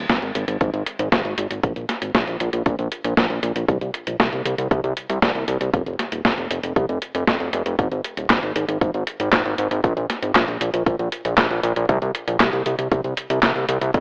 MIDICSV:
0, 0, Header, 1, 3, 480
1, 0, Start_track
1, 0, Tempo, 512821
1, 1529, Time_signature, 4, 2, 24, 8
1, 13105, End_track
2, 0, Start_track
2, 0, Title_t, "Analog synth bass"
2, 0, Program_c, 0, 38
2, 91, Note_on_c, 0, 32, 99
2, 178, Note_off_c, 0, 32, 0
2, 210, Note_on_c, 0, 32, 80
2, 298, Note_off_c, 0, 32, 0
2, 330, Note_on_c, 0, 32, 93
2, 418, Note_off_c, 0, 32, 0
2, 450, Note_on_c, 0, 32, 83
2, 538, Note_off_c, 0, 32, 0
2, 570, Note_on_c, 0, 32, 95
2, 658, Note_off_c, 0, 32, 0
2, 689, Note_on_c, 0, 32, 74
2, 778, Note_off_c, 0, 32, 0
2, 929, Note_on_c, 0, 32, 76
2, 1017, Note_off_c, 0, 32, 0
2, 1050, Note_on_c, 0, 32, 99
2, 1138, Note_off_c, 0, 32, 0
2, 1169, Note_on_c, 0, 32, 74
2, 1257, Note_off_c, 0, 32, 0
2, 1289, Note_on_c, 0, 32, 86
2, 1378, Note_off_c, 0, 32, 0
2, 1410, Note_on_c, 0, 32, 81
2, 1498, Note_off_c, 0, 32, 0
2, 1530, Note_on_c, 0, 34, 101
2, 1618, Note_off_c, 0, 34, 0
2, 1650, Note_on_c, 0, 34, 74
2, 1738, Note_off_c, 0, 34, 0
2, 1890, Note_on_c, 0, 32, 77
2, 1978, Note_off_c, 0, 32, 0
2, 2010, Note_on_c, 0, 34, 96
2, 2098, Note_off_c, 0, 34, 0
2, 2130, Note_on_c, 0, 34, 79
2, 2218, Note_off_c, 0, 34, 0
2, 2249, Note_on_c, 0, 34, 93
2, 2338, Note_off_c, 0, 34, 0
2, 2370, Note_on_c, 0, 34, 79
2, 2458, Note_off_c, 0, 34, 0
2, 2489, Note_on_c, 0, 34, 97
2, 2578, Note_off_c, 0, 34, 0
2, 2611, Note_on_c, 0, 34, 73
2, 2698, Note_off_c, 0, 34, 0
2, 2850, Note_on_c, 0, 34, 78
2, 2938, Note_off_c, 0, 34, 0
2, 2969, Note_on_c, 0, 34, 102
2, 3058, Note_off_c, 0, 34, 0
2, 3090, Note_on_c, 0, 34, 74
2, 3178, Note_off_c, 0, 34, 0
2, 3209, Note_on_c, 0, 34, 90
2, 3298, Note_off_c, 0, 34, 0
2, 3329, Note_on_c, 0, 34, 83
2, 3418, Note_off_c, 0, 34, 0
2, 3449, Note_on_c, 0, 36, 101
2, 3538, Note_off_c, 0, 36, 0
2, 3570, Note_on_c, 0, 36, 74
2, 3658, Note_off_c, 0, 36, 0
2, 3810, Note_on_c, 0, 34, 78
2, 3898, Note_off_c, 0, 34, 0
2, 3929, Note_on_c, 0, 36, 95
2, 4018, Note_off_c, 0, 36, 0
2, 4049, Note_on_c, 0, 36, 77
2, 4138, Note_off_c, 0, 36, 0
2, 4169, Note_on_c, 0, 36, 91
2, 4258, Note_off_c, 0, 36, 0
2, 4290, Note_on_c, 0, 36, 78
2, 4378, Note_off_c, 0, 36, 0
2, 4409, Note_on_c, 0, 36, 95
2, 4498, Note_off_c, 0, 36, 0
2, 4529, Note_on_c, 0, 36, 74
2, 4617, Note_off_c, 0, 36, 0
2, 4769, Note_on_c, 0, 36, 79
2, 4857, Note_off_c, 0, 36, 0
2, 4889, Note_on_c, 0, 36, 100
2, 4977, Note_off_c, 0, 36, 0
2, 5009, Note_on_c, 0, 36, 73
2, 5098, Note_off_c, 0, 36, 0
2, 5129, Note_on_c, 0, 36, 90
2, 5218, Note_off_c, 0, 36, 0
2, 5249, Note_on_c, 0, 36, 81
2, 5337, Note_off_c, 0, 36, 0
2, 5369, Note_on_c, 0, 29, 101
2, 5458, Note_off_c, 0, 29, 0
2, 5489, Note_on_c, 0, 29, 75
2, 5578, Note_off_c, 0, 29, 0
2, 5729, Note_on_c, 0, 27, 77
2, 5817, Note_off_c, 0, 27, 0
2, 5849, Note_on_c, 0, 29, 97
2, 5938, Note_off_c, 0, 29, 0
2, 5969, Note_on_c, 0, 29, 77
2, 6057, Note_off_c, 0, 29, 0
2, 6089, Note_on_c, 0, 29, 91
2, 6178, Note_off_c, 0, 29, 0
2, 6209, Note_on_c, 0, 29, 78
2, 6298, Note_off_c, 0, 29, 0
2, 6329, Note_on_c, 0, 36, 97
2, 6417, Note_off_c, 0, 36, 0
2, 6449, Note_on_c, 0, 29, 75
2, 6538, Note_off_c, 0, 29, 0
2, 6689, Note_on_c, 0, 29, 81
2, 6778, Note_off_c, 0, 29, 0
2, 6810, Note_on_c, 0, 29, 99
2, 6898, Note_off_c, 0, 29, 0
2, 6929, Note_on_c, 0, 29, 78
2, 7018, Note_off_c, 0, 29, 0
2, 7049, Note_on_c, 0, 29, 88
2, 7138, Note_off_c, 0, 29, 0
2, 7170, Note_on_c, 0, 29, 83
2, 7258, Note_off_c, 0, 29, 0
2, 7290, Note_on_c, 0, 32, 101
2, 7378, Note_off_c, 0, 32, 0
2, 7409, Note_on_c, 0, 32, 78
2, 7498, Note_off_c, 0, 32, 0
2, 7649, Note_on_c, 0, 27, 76
2, 7738, Note_off_c, 0, 27, 0
2, 7770, Note_on_c, 0, 32, 94
2, 7858, Note_off_c, 0, 32, 0
2, 7889, Note_on_c, 0, 32, 77
2, 7978, Note_off_c, 0, 32, 0
2, 8009, Note_on_c, 0, 32, 92
2, 8097, Note_off_c, 0, 32, 0
2, 8129, Note_on_c, 0, 32, 81
2, 8217, Note_off_c, 0, 32, 0
2, 8250, Note_on_c, 0, 32, 96
2, 8338, Note_off_c, 0, 32, 0
2, 8370, Note_on_c, 0, 32, 77
2, 8458, Note_off_c, 0, 32, 0
2, 8610, Note_on_c, 0, 32, 78
2, 8698, Note_off_c, 0, 32, 0
2, 8730, Note_on_c, 0, 32, 99
2, 8818, Note_off_c, 0, 32, 0
2, 8849, Note_on_c, 0, 32, 78
2, 8938, Note_off_c, 0, 32, 0
2, 8969, Note_on_c, 0, 32, 92
2, 9058, Note_off_c, 0, 32, 0
2, 9089, Note_on_c, 0, 32, 84
2, 9177, Note_off_c, 0, 32, 0
2, 9209, Note_on_c, 0, 34, 100
2, 9298, Note_off_c, 0, 34, 0
2, 9329, Note_on_c, 0, 34, 80
2, 9418, Note_off_c, 0, 34, 0
2, 9569, Note_on_c, 0, 32, 76
2, 9658, Note_off_c, 0, 32, 0
2, 9689, Note_on_c, 0, 34, 95
2, 9778, Note_off_c, 0, 34, 0
2, 9809, Note_on_c, 0, 34, 77
2, 9897, Note_off_c, 0, 34, 0
2, 9929, Note_on_c, 0, 34, 91
2, 10018, Note_off_c, 0, 34, 0
2, 10050, Note_on_c, 0, 34, 83
2, 10138, Note_off_c, 0, 34, 0
2, 10169, Note_on_c, 0, 34, 94
2, 10258, Note_off_c, 0, 34, 0
2, 10291, Note_on_c, 0, 34, 78
2, 10378, Note_off_c, 0, 34, 0
2, 10531, Note_on_c, 0, 34, 79
2, 10618, Note_off_c, 0, 34, 0
2, 10649, Note_on_c, 0, 34, 104
2, 10738, Note_off_c, 0, 34, 0
2, 10770, Note_on_c, 0, 34, 78
2, 10858, Note_off_c, 0, 34, 0
2, 10890, Note_on_c, 0, 34, 94
2, 10978, Note_off_c, 0, 34, 0
2, 11010, Note_on_c, 0, 34, 84
2, 11098, Note_off_c, 0, 34, 0
2, 11129, Note_on_c, 0, 36, 103
2, 11218, Note_off_c, 0, 36, 0
2, 11249, Note_on_c, 0, 36, 77
2, 11338, Note_off_c, 0, 36, 0
2, 11490, Note_on_c, 0, 34, 80
2, 11578, Note_off_c, 0, 34, 0
2, 11610, Note_on_c, 0, 36, 100
2, 11698, Note_off_c, 0, 36, 0
2, 11730, Note_on_c, 0, 36, 81
2, 11818, Note_off_c, 0, 36, 0
2, 11850, Note_on_c, 0, 36, 93
2, 11938, Note_off_c, 0, 36, 0
2, 11969, Note_on_c, 0, 36, 80
2, 12057, Note_off_c, 0, 36, 0
2, 12090, Note_on_c, 0, 36, 98
2, 12178, Note_off_c, 0, 36, 0
2, 12210, Note_on_c, 0, 36, 76
2, 12298, Note_off_c, 0, 36, 0
2, 12449, Note_on_c, 0, 36, 78
2, 12537, Note_off_c, 0, 36, 0
2, 12570, Note_on_c, 0, 36, 101
2, 12658, Note_off_c, 0, 36, 0
2, 12689, Note_on_c, 0, 36, 74
2, 12778, Note_off_c, 0, 36, 0
2, 12811, Note_on_c, 0, 36, 87
2, 12898, Note_off_c, 0, 36, 0
2, 12931, Note_on_c, 0, 36, 83
2, 13018, Note_off_c, 0, 36, 0
2, 13050, Note_on_c, 0, 29, 98
2, 13105, Note_off_c, 0, 29, 0
2, 13105, End_track
3, 0, Start_track
3, 0, Title_t, "Drums"
3, 89, Note_on_c, 9, 38, 113
3, 89, Note_on_c, 9, 42, 51
3, 90, Note_on_c, 9, 36, 115
3, 183, Note_off_c, 9, 36, 0
3, 183, Note_off_c, 9, 38, 0
3, 183, Note_off_c, 9, 42, 0
3, 210, Note_on_c, 9, 42, 27
3, 303, Note_off_c, 9, 42, 0
3, 329, Note_on_c, 9, 42, 94
3, 423, Note_off_c, 9, 42, 0
3, 449, Note_on_c, 9, 42, 53
3, 543, Note_off_c, 9, 42, 0
3, 569, Note_on_c, 9, 42, 50
3, 570, Note_on_c, 9, 36, 111
3, 663, Note_off_c, 9, 42, 0
3, 664, Note_off_c, 9, 36, 0
3, 689, Note_on_c, 9, 42, 27
3, 783, Note_off_c, 9, 42, 0
3, 809, Note_on_c, 9, 42, 92
3, 902, Note_off_c, 9, 42, 0
3, 929, Note_on_c, 9, 42, 51
3, 1023, Note_off_c, 9, 42, 0
3, 1049, Note_on_c, 9, 38, 116
3, 1049, Note_on_c, 9, 42, 53
3, 1050, Note_on_c, 9, 36, 117
3, 1143, Note_off_c, 9, 36, 0
3, 1143, Note_off_c, 9, 38, 0
3, 1143, Note_off_c, 9, 42, 0
3, 1169, Note_on_c, 9, 42, 26
3, 1263, Note_off_c, 9, 42, 0
3, 1289, Note_on_c, 9, 42, 101
3, 1382, Note_off_c, 9, 42, 0
3, 1409, Note_on_c, 9, 42, 53
3, 1503, Note_off_c, 9, 42, 0
3, 1530, Note_on_c, 9, 36, 113
3, 1530, Note_on_c, 9, 42, 51
3, 1623, Note_off_c, 9, 36, 0
3, 1623, Note_off_c, 9, 42, 0
3, 1649, Note_on_c, 9, 42, 26
3, 1743, Note_off_c, 9, 42, 0
3, 1769, Note_on_c, 9, 38, 37
3, 1769, Note_on_c, 9, 42, 89
3, 1863, Note_off_c, 9, 38, 0
3, 1863, Note_off_c, 9, 42, 0
3, 1889, Note_on_c, 9, 42, 52
3, 1983, Note_off_c, 9, 42, 0
3, 2009, Note_on_c, 9, 38, 120
3, 2009, Note_on_c, 9, 42, 51
3, 2010, Note_on_c, 9, 36, 117
3, 2103, Note_off_c, 9, 36, 0
3, 2103, Note_off_c, 9, 38, 0
3, 2103, Note_off_c, 9, 42, 0
3, 2129, Note_on_c, 9, 42, 26
3, 2223, Note_off_c, 9, 42, 0
3, 2248, Note_on_c, 9, 42, 90
3, 2342, Note_off_c, 9, 42, 0
3, 2368, Note_on_c, 9, 42, 52
3, 2462, Note_off_c, 9, 42, 0
3, 2489, Note_on_c, 9, 42, 52
3, 2490, Note_on_c, 9, 36, 118
3, 2582, Note_off_c, 9, 42, 0
3, 2583, Note_off_c, 9, 36, 0
3, 2609, Note_on_c, 9, 42, 25
3, 2703, Note_off_c, 9, 42, 0
3, 2729, Note_on_c, 9, 42, 89
3, 2823, Note_off_c, 9, 42, 0
3, 2849, Note_on_c, 9, 42, 51
3, 2943, Note_off_c, 9, 42, 0
3, 2969, Note_on_c, 9, 36, 123
3, 2969, Note_on_c, 9, 38, 126
3, 2969, Note_on_c, 9, 42, 52
3, 3063, Note_off_c, 9, 36, 0
3, 3063, Note_off_c, 9, 38, 0
3, 3063, Note_off_c, 9, 42, 0
3, 3090, Note_on_c, 9, 42, 25
3, 3183, Note_off_c, 9, 42, 0
3, 3210, Note_on_c, 9, 42, 91
3, 3303, Note_off_c, 9, 42, 0
3, 3330, Note_on_c, 9, 42, 50
3, 3424, Note_off_c, 9, 42, 0
3, 3449, Note_on_c, 9, 36, 118
3, 3450, Note_on_c, 9, 42, 52
3, 3542, Note_off_c, 9, 36, 0
3, 3543, Note_off_c, 9, 42, 0
3, 3570, Note_on_c, 9, 42, 26
3, 3663, Note_off_c, 9, 42, 0
3, 3689, Note_on_c, 9, 42, 86
3, 3782, Note_off_c, 9, 42, 0
3, 3809, Note_on_c, 9, 42, 50
3, 3903, Note_off_c, 9, 42, 0
3, 3929, Note_on_c, 9, 36, 120
3, 3929, Note_on_c, 9, 38, 120
3, 3929, Note_on_c, 9, 42, 50
3, 4022, Note_off_c, 9, 36, 0
3, 4023, Note_off_c, 9, 38, 0
3, 4023, Note_off_c, 9, 42, 0
3, 4049, Note_on_c, 9, 42, 24
3, 4143, Note_off_c, 9, 42, 0
3, 4169, Note_on_c, 9, 42, 89
3, 4263, Note_off_c, 9, 42, 0
3, 4290, Note_on_c, 9, 42, 51
3, 4383, Note_off_c, 9, 42, 0
3, 4409, Note_on_c, 9, 36, 122
3, 4410, Note_on_c, 9, 42, 47
3, 4502, Note_off_c, 9, 36, 0
3, 4504, Note_off_c, 9, 42, 0
3, 4530, Note_on_c, 9, 42, 25
3, 4624, Note_off_c, 9, 42, 0
3, 4649, Note_on_c, 9, 42, 85
3, 4743, Note_off_c, 9, 42, 0
3, 4769, Note_on_c, 9, 42, 48
3, 4863, Note_off_c, 9, 42, 0
3, 4889, Note_on_c, 9, 36, 118
3, 4889, Note_on_c, 9, 38, 127
3, 4889, Note_on_c, 9, 42, 51
3, 4982, Note_off_c, 9, 36, 0
3, 4983, Note_off_c, 9, 38, 0
3, 4983, Note_off_c, 9, 42, 0
3, 5009, Note_on_c, 9, 42, 24
3, 5103, Note_off_c, 9, 42, 0
3, 5129, Note_on_c, 9, 42, 91
3, 5222, Note_off_c, 9, 42, 0
3, 5249, Note_on_c, 9, 42, 50
3, 5343, Note_off_c, 9, 42, 0
3, 5369, Note_on_c, 9, 36, 119
3, 5369, Note_on_c, 9, 42, 48
3, 5462, Note_off_c, 9, 36, 0
3, 5462, Note_off_c, 9, 42, 0
3, 5489, Note_on_c, 9, 42, 26
3, 5583, Note_off_c, 9, 42, 0
3, 5609, Note_on_c, 9, 38, 36
3, 5609, Note_on_c, 9, 42, 83
3, 5703, Note_off_c, 9, 38, 0
3, 5703, Note_off_c, 9, 42, 0
3, 5729, Note_on_c, 9, 42, 49
3, 5822, Note_off_c, 9, 42, 0
3, 5849, Note_on_c, 9, 36, 119
3, 5849, Note_on_c, 9, 38, 121
3, 5849, Note_on_c, 9, 42, 49
3, 5943, Note_off_c, 9, 36, 0
3, 5943, Note_off_c, 9, 38, 0
3, 5943, Note_off_c, 9, 42, 0
3, 5969, Note_on_c, 9, 42, 25
3, 6063, Note_off_c, 9, 42, 0
3, 6089, Note_on_c, 9, 42, 85
3, 6183, Note_off_c, 9, 42, 0
3, 6209, Note_on_c, 9, 42, 48
3, 6303, Note_off_c, 9, 42, 0
3, 6329, Note_on_c, 9, 36, 114
3, 6330, Note_on_c, 9, 42, 47
3, 6423, Note_off_c, 9, 36, 0
3, 6423, Note_off_c, 9, 42, 0
3, 6450, Note_on_c, 9, 42, 24
3, 6544, Note_off_c, 9, 42, 0
3, 6569, Note_on_c, 9, 42, 85
3, 6663, Note_off_c, 9, 42, 0
3, 6690, Note_on_c, 9, 42, 48
3, 6783, Note_off_c, 9, 42, 0
3, 6809, Note_on_c, 9, 36, 123
3, 6809, Note_on_c, 9, 38, 127
3, 6809, Note_on_c, 9, 42, 51
3, 6903, Note_off_c, 9, 36, 0
3, 6903, Note_off_c, 9, 38, 0
3, 6903, Note_off_c, 9, 42, 0
3, 6929, Note_on_c, 9, 42, 23
3, 7023, Note_off_c, 9, 42, 0
3, 7049, Note_on_c, 9, 42, 86
3, 7143, Note_off_c, 9, 42, 0
3, 7169, Note_on_c, 9, 42, 47
3, 7263, Note_off_c, 9, 42, 0
3, 7289, Note_on_c, 9, 36, 115
3, 7290, Note_on_c, 9, 42, 51
3, 7383, Note_off_c, 9, 36, 0
3, 7383, Note_off_c, 9, 42, 0
3, 7409, Note_on_c, 9, 42, 25
3, 7503, Note_off_c, 9, 42, 0
3, 7529, Note_on_c, 9, 42, 88
3, 7623, Note_off_c, 9, 42, 0
3, 7649, Note_on_c, 9, 42, 48
3, 7743, Note_off_c, 9, 42, 0
3, 7769, Note_on_c, 9, 36, 118
3, 7769, Note_on_c, 9, 38, 116
3, 7769, Note_on_c, 9, 39, 85
3, 7769, Note_on_c, 9, 42, 50
3, 7863, Note_off_c, 9, 36, 0
3, 7863, Note_off_c, 9, 38, 0
3, 7863, Note_off_c, 9, 39, 0
3, 7863, Note_off_c, 9, 42, 0
3, 7889, Note_on_c, 9, 42, 26
3, 7983, Note_off_c, 9, 42, 0
3, 8009, Note_on_c, 9, 42, 83
3, 8103, Note_off_c, 9, 42, 0
3, 8130, Note_on_c, 9, 42, 51
3, 8223, Note_off_c, 9, 42, 0
3, 8249, Note_on_c, 9, 36, 115
3, 8250, Note_on_c, 9, 42, 47
3, 8343, Note_off_c, 9, 36, 0
3, 8343, Note_off_c, 9, 42, 0
3, 8370, Note_on_c, 9, 42, 25
3, 8464, Note_off_c, 9, 42, 0
3, 8490, Note_on_c, 9, 42, 83
3, 8583, Note_off_c, 9, 42, 0
3, 8610, Note_on_c, 9, 42, 49
3, 8703, Note_off_c, 9, 42, 0
3, 8729, Note_on_c, 9, 36, 116
3, 8729, Note_on_c, 9, 38, 120
3, 8729, Note_on_c, 9, 39, 84
3, 8729, Note_on_c, 9, 42, 51
3, 8823, Note_off_c, 9, 36, 0
3, 8823, Note_off_c, 9, 38, 0
3, 8823, Note_off_c, 9, 39, 0
3, 8823, Note_off_c, 9, 42, 0
3, 8850, Note_on_c, 9, 42, 25
3, 8944, Note_off_c, 9, 42, 0
3, 8969, Note_on_c, 9, 42, 90
3, 9063, Note_off_c, 9, 42, 0
3, 9090, Note_on_c, 9, 42, 47
3, 9183, Note_off_c, 9, 42, 0
3, 9209, Note_on_c, 9, 36, 113
3, 9210, Note_on_c, 9, 42, 50
3, 9303, Note_off_c, 9, 36, 0
3, 9304, Note_off_c, 9, 42, 0
3, 9331, Note_on_c, 9, 42, 26
3, 9424, Note_off_c, 9, 42, 0
3, 9451, Note_on_c, 9, 38, 33
3, 9451, Note_on_c, 9, 42, 84
3, 9544, Note_off_c, 9, 38, 0
3, 9544, Note_off_c, 9, 42, 0
3, 9570, Note_on_c, 9, 42, 50
3, 9664, Note_off_c, 9, 42, 0
3, 9689, Note_on_c, 9, 36, 113
3, 9691, Note_on_c, 9, 38, 111
3, 9691, Note_on_c, 9, 39, 83
3, 9691, Note_on_c, 9, 42, 51
3, 9783, Note_off_c, 9, 36, 0
3, 9784, Note_off_c, 9, 38, 0
3, 9784, Note_off_c, 9, 39, 0
3, 9784, Note_off_c, 9, 42, 0
3, 9811, Note_on_c, 9, 42, 27
3, 9904, Note_off_c, 9, 42, 0
3, 9930, Note_on_c, 9, 42, 93
3, 10024, Note_off_c, 9, 42, 0
3, 10050, Note_on_c, 9, 42, 50
3, 10144, Note_off_c, 9, 42, 0
3, 10169, Note_on_c, 9, 36, 108
3, 10170, Note_on_c, 9, 42, 48
3, 10262, Note_off_c, 9, 36, 0
3, 10264, Note_off_c, 9, 42, 0
3, 10291, Note_on_c, 9, 42, 25
3, 10384, Note_off_c, 9, 42, 0
3, 10410, Note_on_c, 9, 42, 89
3, 10504, Note_off_c, 9, 42, 0
3, 10530, Note_on_c, 9, 42, 48
3, 10623, Note_off_c, 9, 42, 0
3, 10649, Note_on_c, 9, 36, 117
3, 10650, Note_on_c, 9, 38, 115
3, 10650, Note_on_c, 9, 39, 86
3, 10650, Note_on_c, 9, 42, 52
3, 10743, Note_off_c, 9, 36, 0
3, 10743, Note_off_c, 9, 38, 0
3, 10743, Note_off_c, 9, 39, 0
3, 10743, Note_off_c, 9, 42, 0
3, 10770, Note_on_c, 9, 42, 25
3, 10864, Note_off_c, 9, 42, 0
3, 10890, Note_on_c, 9, 42, 95
3, 10983, Note_off_c, 9, 42, 0
3, 11010, Note_on_c, 9, 42, 50
3, 11103, Note_off_c, 9, 42, 0
3, 11129, Note_on_c, 9, 36, 105
3, 11129, Note_on_c, 9, 42, 55
3, 11223, Note_off_c, 9, 36, 0
3, 11223, Note_off_c, 9, 42, 0
3, 11249, Note_on_c, 9, 42, 27
3, 11343, Note_off_c, 9, 42, 0
3, 11369, Note_on_c, 9, 42, 87
3, 11463, Note_off_c, 9, 42, 0
3, 11490, Note_on_c, 9, 42, 54
3, 11584, Note_off_c, 9, 42, 0
3, 11609, Note_on_c, 9, 36, 109
3, 11609, Note_on_c, 9, 38, 116
3, 11609, Note_on_c, 9, 39, 88
3, 11609, Note_on_c, 9, 42, 54
3, 11703, Note_off_c, 9, 36, 0
3, 11703, Note_off_c, 9, 38, 0
3, 11703, Note_off_c, 9, 39, 0
3, 11703, Note_off_c, 9, 42, 0
3, 11729, Note_on_c, 9, 42, 27
3, 11823, Note_off_c, 9, 42, 0
3, 11849, Note_on_c, 9, 42, 91
3, 11942, Note_off_c, 9, 42, 0
3, 11969, Note_on_c, 9, 42, 55
3, 12063, Note_off_c, 9, 42, 0
3, 12089, Note_on_c, 9, 42, 53
3, 12090, Note_on_c, 9, 36, 109
3, 12182, Note_off_c, 9, 42, 0
3, 12183, Note_off_c, 9, 36, 0
3, 12209, Note_on_c, 9, 42, 25
3, 12303, Note_off_c, 9, 42, 0
3, 12329, Note_on_c, 9, 42, 92
3, 12422, Note_off_c, 9, 42, 0
3, 12450, Note_on_c, 9, 42, 53
3, 12543, Note_off_c, 9, 42, 0
3, 12569, Note_on_c, 9, 38, 114
3, 12569, Note_on_c, 9, 39, 89
3, 12569, Note_on_c, 9, 42, 56
3, 12570, Note_on_c, 9, 36, 112
3, 12663, Note_off_c, 9, 36, 0
3, 12663, Note_off_c, 9, 38, 0
3, 12663, Note_off_c, 9, 39, 0
3, 12663, Note_off_c, 9, 42, 0
3, 12689, Note_on_c, 9, 42, 25
3, 12783, Note_off_c, 9, 42, 0
3, 12809, Note_on_c, 9, 42, 97
3, 12903, Note_off_c, 9, 42, 0
3, 12930, Note_on_c, 9, 42, 51
3, 13023, Note_off_c, 9, 42, 0
3, 13050, Note_on_c, 9, 36, 116
3, 13050, Note_on_c, 9, 42, 54
3, 13105, Note_off_c, 9, 36, 0
3, 13105, Note_off_c, 9, 42, 0
3, 13105, End_track
0, 0, End_of_file